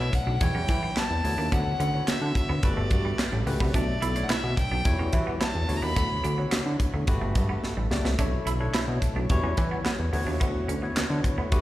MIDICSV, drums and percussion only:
0, 0, Header, 1, 2, 480
1, 0, Start_track
1, 0, Tempo, 555556
1, 1312, Time_signature, 4, 2, 24, 8
1, 10031, End_track
2, 0, Start_track
2, 0, Title_t, "Drums"
2, 113, Note_on_c, 9, 36, 89
2, 118, Note_on_c, 9, 42, 68
2, 199, Note_off_c, 9, 36, 0
2, 204, Note_off_c, 9, 42, 0
2, 352, Note_on_c, 9, 42, 82
2, 354, Note_on_c, 9, 36, 116
2, 438, Note_off_c, 9, 42, 0
2, 441, Note_off_c, 9, 36, 0
2, 591, Note_on_c, 9, 42, 77
2, 594, Note_on_c, 9, 36, 89
2, 678, Note_off_c, 9, 42, 0
2, 681, Note_off_c, 9, 36, 0
2, 837, Note_on_c, 9, 38, 101
2, 837, Note_on_c, 9, 39, 80
2, 838, Note_on_c, 9, 42, 79
2, 924, Note_off_c, 9, 38, 0
2, 924, Note_off_c, 9, 39, 0
2, 924, Note_off_c, 9, 42, 0
2, 1077, Note_on_c, 9, 46, 60
2, 1164, Note_off_c, 9, 46, 0
2, 1315, Note_on_c, 9, 36, 97
2, 1315, Note_on_c, 9, 42, 94
2, 1401, Note_off_c, 9, 36, 0
2, 1402, Note_off_c, 9, 42, 0
2, 1558, Note_on_c, 9, 42, 66
2, 1645, Note_off_c, 9, 42, 0
2, 1792, Note_on_c, 9, 42, 109
2, 1799, Note_on_c, 9, 38, 125
2, 1799, Note_on_c, 9, 39, 99
2, 1879, Note_off_c, 9, 42, 0
2, 1885, Note_off_c, 9, 38, 0
2, 1885, Note_off_c, 9, 39, 0
2, 2033, Note_on_c, 9, 36, 84
2, 2038, Note_on_c, 9, 42, 70
2, 2119, Note_off_c, 9, 36, 0
2, 2125, Note_off_c, 9, 42, 0
2, 2271, Note_on_c, 9, 42, 83
2, 2274, Note_on_c, 9, 36, 108
2, 2358, Note_off_c, 9, 42, 0
2, 2361, Note_off_c, 9, 36, 0
2, 2511, Note_on_c, 9, 42, 77
2, 2514, Note_on_c, 9, 36, 86
2, 2597, Note_off_c, 9, 42, 0
2, 2600, Note_off_c, 9, 36, 0
2, 2757, Note_on_c, 9, 38, 105
2, 2757, Note_on_c, 9, 39, 81
2, 2757, Note_on_c, 9, 42, 76
2, 2843, Note_off_c, 9, 38, 0
2, 2843, Note_off_c, 9, 39, 0
2, 2844, Note_off_c, 9, 42, 0
2, 2997, Note_on_c, 9, 46, 59
2, 3084, Note_off_c, 9, 46, 0
2, 3114, Note_on_c, 9, 36, 94
2, 3200, Note_off_c, 9, 36, 0
2, 3233, Note_on_c, 9, 36, 100
2, 3234, Note_on_c, 9, 42, 88
2, 3320, Note_off_c, 9, 36, 0
2, 3320, Note_off_c, 9, 42, 0
2, 3477, Note_on_c, 9, 42, 67
2, 3563, Note_off_c, 9, 42, 0
2, 3593, Note_on_c, 9, 42, 49
2, 3679, Note_off_c, 9, 42, 0
2, 3711, Note_on_c, 9, 42, 105
2, 3717, Note_on_c, 9, 38, 124
2, 3717, Note_on_c, 9, 39, 95
2, 3797, Note_off_c, 9, 42, 0
2, 3804, Note_off_c, 9, 38, 0
2, 3804, Note_off_c, 9, 39, 0
2, 3952, Note_on_c, 9, 36, 92
2, 3955, Note_on_c, 9, 42, 71
2, 4038, Note_off_c, 9, 36, 0
2, 4042, Note_off_c, 9, 42, 0
2, 4191, Note_on_c, 9, 42, 83
2, 4193, Note_on_c, 9, 36, 113
2, 4277, Note_off_c, 9, 42, 0
2, 4280, Note_off_c, 9, 36, 0
2, 4429, Note_on_c, 9, 42, 69
2, 4433, Note_on_c, 9, 36, 91
2, 4515, Note_off_c, 9, 42, 0
2, 4520, Note_off_c, 9, 36, 0
2, 4677, Note_on_c, 9, 38, 106
2, 4677, Note_on_c, 9, 39, 82
2, 4677, Note_on_c, 9, 42, 79
2, 4763, Note_off_c, 9, 38, 0
2, 4763, Note_off_c, 9, 39, 0
2, 4764, Note_off_c, 9, 42, 0
2, 4917, Note_on_c, 9, 46, 65
2, 5003, Note_off_c, 9, 46, 0
2, 5153, Note_on_c, 9, 42, 94
2, 5154, Note_on_c, 9, 36, 107
2, 5239, Note_off_c, 9, 42, 0
2, 5240, Note_off_c, 9, 36, 0
2, 5396, Note_on_c, 9, 42, 59
2, 5482, Note_off_c, 9, 42, 0
2, 5630, Note_on_c, 9, 42, 105
2, 5637, Note_on_c, 9, 38, 114
2, 5637, Note_on_c, 9, 39, 107
2, 5717, Note_off_c, 9, 42, 0
2, 5723, Note_off_c, 9, 38, 0
2, 5723, Note_off_c, 9, 39, 0
2, 5873, Note_on_c, 9, 36, 90
2, 5877, Note_on_c, 9, 42, 67
2, 5960, Note_off_c, 9, 36, 0
2, 5964, Note_off_c, 9, 42, 0
2, 6111, Note_on_c, 9, 42, 79
2, 6115, Note_on_c, 9, 36, 106
2, 6198, Note_off_c, 9, 42, 0
2, 6201, Note_off_c, 9, 36, 0
2, 6352, Note_on_c, 9, 42, 77
2, 6355, Note_on_c, 9, 36, 92
2, 6439, Note_off_c, 9, 42, 0
2, 6441, Note_off_c, 9, 36, 0
2, 6597, Note_on_c, 9, 38, 54
2, 6684, Note_off_c, 9, 38, 0
2, 6838, Note_on_c, 9, 38, 88
2, 6924, Note_off_c, 9, 38, 0
2, 6958, Note_on_c, 9, 38, 87
2, 7044, Note_off_c, 9, 38, 0
2, 7073, Note_on_c, 9, 42, 95
2, 7074, Note_on_c, 9, 36, 102
2, 7160, Note_off_c, 9, 42, 0
2, 7161, Note_off_c, 9, 36, 0
2, 7316, Note_on_c, 9, 42, 67
2, 7402, Note_off_c, 9, 42, 0
2, 7550, Note_on_c, 9, 42, 101
2, 7556, Note_on_c, 9, 38, 121
2, 7556, Note_on_c, 9, 39, 105
2, 7636, Note_off_c, 9, 42, 0
2, 7643, Note_off_c, 9, 38, 0
2, 7643, Note_off_c, 9, 39, 0
2, 7793, Note_on_c, 9, 36, 82
2, 7796, Note_on_c, 9, 42, 70
2, 7879, Note_off_c, 9, 36, 0
2, 7882, Note_off_c, 9, 42, 0
2, 8031, Note_on_c, 9, 42, 78
2, 8035, Note_on_c, 9, 36, 114
2, 8118, Note_off_c, 9, 42, 0
2, 8121, Note_off_c, 9, 36, 0
2, 8271, Note_on_c, 9, 42, 75
2, 8275, Note_on_c, 9, 36, 91
2, 8357, Note_off_c, 9, 42, 0
2, 8361, Note_off_c, 9, 36, 0
2, 8517, Note_on_c, 9, 38, 108
2, 8517, Note_on_c, 9, 39, 83
2, 8517, Note_on_c, 9, 42, 80
2, 8603, Note_off_c, 9, 38, 0
2, 8603, Note_off_c, 9, 39, 0
2, 8604, Note_off_c, 9, 42, 0
2, 8755, Note_on_c, 9, 46, 60
2, 8842, Note_off_c, 9, 46, 0
2, 8994, Note_on_c, 9, 36, 99
2, 8994, Note_on_c, 9, 42, 92
2, 9080, Note_off_c, 9, 42, 0
2, 9081, Note_off_c, 9, 36, 0
2, 9237, Note_on_c, 9, 42, 65
2, 9324, Note_off_c, 9, 42, 0
2, 9472, Note_on_c, 9, 42, 102
2, 9479, Note_on_c, 9, 38, 114
2, 9479, Note_on_c, 9, 39, 101
2, 9559, Note_off_c, 9, 42, 0
2, 9565, Note_off_c, 9, 38, 0
2, 9565, Note_off_c, 9, 39, 0
2, 9713, Note_on_c, 9, 36, 85
2, 9717, Note_on_c, 9, 42, 66
2, 9800, Note_off_c, 9, 36, 0
2, 9803, Note_off_c, 9, 42, 0
2, 9952, Note_on_c, 9, 42, 80
2, 9955, Note_on_c, 9, 36, 110
2, 10031, Note_off_c, 9, 36, 0
2, 10031, Note_off_c, 9, 42, 0
2, 10031, End_track
0, 0, End_of_file